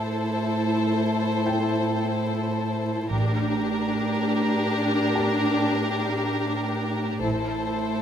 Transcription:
0.00 3.08 A2 soft
0.00 3.08 E4 soft
0.00 3.08 A4 soft
0.00 3.08 C5 soft
1.46 3.89 G5 soft
3.11 3.89 A1 soft
3.11 7.20 A2 medium
3.11 7.20 D4 medium
3.11 7.20 G4 medium
3.11 7.20 A#4 medium
5.15 7.63 G4 soft
5.15 7.63 A5 soft
7.24 8.02 A1 soft
7.24 8.02 A2 soft
7.24 8.02 E4 soft
7.24 8.02 A4 soft
7.24 8.02 C5 soft

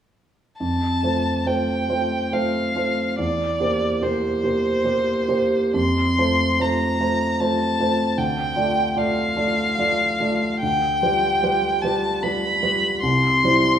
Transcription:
0.59 1.02 F2 soft
0.59 1.48 A5 medium
1.03 1.42 A3 soft
1.03 1.43 F4 soft
1.03 1.43 C5 soft
1.46 1.85 A3 soft
1.46 1.85 F4 soft
1.46 1.86 C5 soft
1.46 2.34 G5 medium
1.89 2.28 A3 soft
1.89 2.28 F4 soft
1.89 2.29 C5 soft
2.32 2.71 A3 soft
2.32 2.72 F4 soft
2.32 2.72 C5 soft
2.32 3.18 F5 medium
2.75 3.14 A3 soft
2.75 3.14 F4 soft
2.75 3.14 C5 soft
3.18 3.59 E2 soft
3.18 4.04 D5 medium
3.60 3.98 A#3 soft
3.60 3.98 G4 soft
3.60 3.98 C5 soft
4.01 4.39 A#3 soft
4.01 4.40 G4 soft
4.01 4.40 C5 soft
4.01 5.75 C5 medium
4.44 4.81 A#3 soft
4.44 4.82 G4 soft
4.44 4.82 C5 soft
4.84 5.26 A#3 soft
4.84 5.26 G4 soft
4.84 5.26 C5 soft
5.28 5.71 A#3 soft
5.28 5.71 G4 soft
5.28 5.71 C5 soft
5.74 6.16 F2 soft
5.74 6.62 C6 medium
6.18 6.56 A3 soft
6.18 6.56 F4 soft
6.18 6.56 C5 soft
6.59 6.97 A3 soft
6.59 6.97 F4 soft
6.59 6.97 C5 soft
6.59 7.42 A#5 medium
7.00 7.37 A3 soft
7.00 7.37 F4 soft
7.00 7.37 C5 soft
7.40 7.76 A3 soft
7.40 7.77 F4 soft
7.40 7.77 C5 soft
7.40 8.20 A5 medium
7.79 8.15 A3 soft
7.79 8.15 F4 soft
7.79 8.15 C5 soft
8.18 8.56 D2 soft
8.18 8.98 G5 medium
8.56 8.93 A3 soft
8.56 8.93 F4 soft
8.56 8.93 D5 soft
8.96 9.33 A3 soft
8.96 9.33 F4 soft
8.96 9.34 D5 soft
8.96 10.60 F5 medium
9.36 9.74 A3 soft
9.36 9.74 F4 soft
9.36 9.74 D5 soft
9.79 10.16 A3 soft
9.79 10.16 F4 soft
9.79 10.16 D5 soft
10.20 10.57 A3 soft
10.20 10.58 F4 soft
10.20 10.58 D5 soft
10.60 11.01 D2 soft
10.60 11.83 G5 medium
11.02 11.39 G3 soft
11.02 11.39 F4 soft
11.02 11.39 B4 soft
11.43 11.79 G3 soft
11.43 11.79 F4 soft
11.43 11.80 B4 soft
11.82 12.19 G3 soft
11.82 12.19 F4 soft
11.82 12.20 B4 soft
11.82 12.25 A5 medium
12.23 12.58 G3 soft
12.23 12.59 F4 soft
12.23 12.59 B4 soft
12.23 13.01 B5 medium
12.63 12.99 G3 soft
12.63 12.99 F4 soft
12.63 12.99 B4 soft
13.01 13.43 C2 soft
13.01 13.79 C6 medium
13.44 13.79 G3 soft
13.44 13.79 E4 soft
13.44 13.79 C5 soft

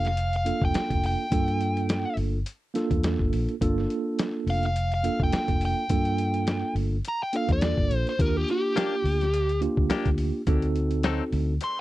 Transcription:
0.00 0.50 F1 medium
0.05 0.34 F5 medium
0.05 snare soft
0.05 closed hi-hat soft
0.17 closed hi-hat medium
0.33 0.62 F5 medium
0.33 closed hi-hat soft
0.45 1.25 A#3 medium
0.45 1.25 D4 medium
0.45 1.25 F4 medium
0.45 1.25 A4 medium
0.45 closed hi-hat medium
0.61 0.72 F1 medium
0.61 1.04 G5 medium
0.61 kick medium
0.74 snare loud
0.74 closed hi-hat medium
0.90 1.14 F1 medium
0.90 kick medium
0.90 closed hi-hat soft
1.04 2.16 G5 medium
1.04 open hi-hat medium
1.31 2.04 G2 medium
1.31 2.37 A#3 medium
1.31 2.37 D4 medium
1.31 2.37 F4 medium
1.31 2.38 A4 medium
1.31 kick loud
1.31 closed hi-hat medium
1.48 closed hi-hat soft
1.61 closed hi-hat medium
1.77 closed hi-hat soft
1.89 snare loud
1.89 closed hi-hat medium
2.17 2.41 G1 medium
2.17 open hi-hat medium
2.46 closed hi-hat medium
2.74 3.54 A#3 medium
2.74 3.54 D4 medium
2.74 3.54 F4 medium
2.74 3.54 A4 loud
2.74 snare soft
2.74 closed hi-hat medium
2.91 3.15 E2 medium
2.91 kick medium
2.91 closed hi-hat soft
3.04 snare loud
3.04 closed hi-hat medium
3.19 3.30 G1 medium
3.19 kick medium
3.32 3.45 A#1 medium
3.32 open hi-hat medium
3.49 closed hi-hat soft
3.61 3.85 G1 loud
3.61 4.66 A#3 medium
3.61 4.67 D4 medium
3.61 4.67 F4 medium
3.61 4.67 A4 loud
3.61 kick loud
3.61 closed hi-hat medium
3.78 snare soft
3.90 closed hi-hat medium
4.19 snare loud
4.19 closed hi-hat medium
4.46 5.08 F1 loud
4.46 4.64 F5 medium
4.46 open hi-hat medium
4.63 4.92 F5 medium
4.63 closed hi-hat soft
4.76 closed hi-hat medium
4.92 5.20 F5 medium
4.92 closed hi-hat soft
5.04 5.83 A#3 medium
5.04 5.83 D4 medium
5.04 5.83 F4 medium
5.04 5.84 A4 medium
5.04 closed hi-hat medium
5.20 5.31 F1 medium
5.20 5.62 G5 medium
5.20 kick medium
5.33 snare loud
5.33 closed hi-hat medium
5.48 5.72 F1 medium
5.48 kick medium
5.48 closed hi-hat soft
5.61 open hi-hat medium
5.65 6.74 G5 medium
5.89 6.62 G2 medium
5.89 6.95 A#3 medium
5.89 6.95 D4 medium
5.89 6.96 F4 medium
5.89 6.96 A4 medium
5.89 kick loud
5.89 closed hi-hat medium
6.05 closed hi-hat soft
6.18 closed hi-hat medium
6.34 closed hi-hat soft
6.47 snare loud
6.47 closed hi-hat medium
6.75 6.99 G1 medium
6.75 open hi-hat medium
7.05 7.22 A#5 medium
7.05 closed hi-hat medium
7.23 7.34 G5 medium
7.33 8.12 A#3 medium
7.33 8.12 D4 medium
7.33 8.13 F4 medium
7.33 8.13 A4 medium
7.33 7.50 F5 medium
7.33 closed hi-hat medium
7.49 7.73 E2 medium
7.49 8.06 D5 medium
7.49 kick medium
7.49 closed hi-hat soft
7.61 snare loud
7.61 closed hi-hat medium
7.77 7.88 G1 medium
7.77 kick medium
7.91 8.04 A#1 medium
7.91 closed hi-hat medium
8.07 8.21 C5 medium
8.07 closed hi-hat soft
8.19 8.43 D#2 medium
8.19 9.24 A#3 medium
8.19 9.24 D4 medium
8.19 9.25 F4 medium
8.19 9.25 G4 medium
8.19 8.37 A#4 medium
8.19 kick loud
8.19 closed hi-hat medium
8.37 8.48 G4 medium
8.48 9.60 G4 medium
8.48 closed hi-hat medium
8.76 8.94 A#3 medium
8.76 8.95 D4 medium
8.76 8.95 G4 medium
8.76 snare loud
8.76 closed hi-hat medium
9.04 9.66 D2 medium
9.04 open hi-hat medium
9.21 snare soft
9.21 closed hi-hat soft
9.34 closed hi-hat medium
9.49 closed hi-hat soft
9.61 10.40 A#3 medium
9.61 10.41 D4 medium
9.61 10.41 F4 medium
9.61 10.41 G4 loud
9.61 closed hi-hat medium
9.77 9.88 D2 medium
9.77 kick medium
9.90 10.08 A#3 medium
9.90 10.09 D4 medium
9.90 10.09 G4 medium
9.90 snare loud
9.90 closed hi-hat medium
10.05 10.30 D2 medium
10.05 kick medium
10.05 closed hi-hat soft
10.18 open hi-hat medium
10.47 11.20 D2 loud
10.47 11.53 C4 medium
10.47 11.53 D#4 medium
10.47 11.53 F#4 medium
10.47 11.53 A4 loud
10.47 kick loud
10.47 closed hi-hat medium
10.62 closed hi-hat soft
10.76 closed hi-hat medium
10.91 closed hi-hat soft
11.03 11.23 F#3 medium
11.03 11.23 C4 medium
11.03 11.23 D#4 loud
11.03 11.23 A4 loud
11.03 snare loud
11.03 closed hi-hat medium
11.32 11.57 D2 loud
11.32 open hi-hat medium
11.61 11.78 C6 medium
11.61 closed hi-hat medium

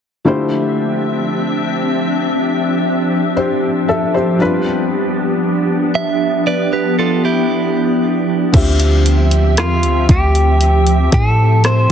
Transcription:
0.25 4.35 D3 medium
0.25 8.50 F3 medium
0.25 4.36 A3 medium
0.25 4.36 C4 medium
0.25 4.36 D4 medium
0.25 4.36 E4 medium
0.25 4.36 F4 medium
0.25 8.50 G4 medium
0.25 3.33 G4 medium
0.25 3.33 C5 medium
0.25 4.36 E5 medium
3.37 3.86 G4 soft
3.37 3.86 C5 medium
3.88 4.13 A4 medium
3.88 4.13 E5 medium
4.14 4.64 G4 medium
4.14 4.63 C5 medium
4.39 8.49 G3 medium
4.39 8.50 B3 medium
4.39 8.50 D4 medium
4.39 8.50 F4 medium
4.39 8.51 B4 medium
5.95 6.44 E5 medium
6.47 6.72 B4 medium
6.47 6.71 D5 medium
6.73 6.98 G4 medium
6.73 6.97 B4 medium
6.99 7.24 F4 medium
6.99 7.23 A4 medium
7.25 8.50 E4 medium
7.25 8.50 G4 medium
8.52 9.59 D2 loud
8.52 11.92 D3 medium
8.52 11.92 F3 medium
8.52 11.92 C4 medium
8.52 11.92 F4 medium
8.52 11.92 G4 medium
8.52 11.92 E5 medium
8.52 kick loud
8.52 closed hi-hat medium
8.52 crash medium
8.80 closed hi-hat medium
9.06 closed hi-hat medium
9.31 closed hi-hat soft
9.57 9.85 E2 medium
9.57 10.10 F4 medium
9.57 cross-stick loud
9.57 closed hi-hat medium
9.83 10.08 D2 loud
9.83 closed hi-hat soft
10.09 11.09 D2 loud
10.09 11.09 G4 medium
10.09 kick medium
10.09 closed hi-hat medium
10.35 closed hi-hat soft
10.61 closed hi-hat medium
10.87 closed hi-hat soft
11.12 11.87 A2 medium
11.12 11.65 A4 medium
11.12 kick medium
11.12 closed hi-hat medium
11.64 11.92 C5 loud
11.64 cross-stick loud
11.64 closed hi-hat medium

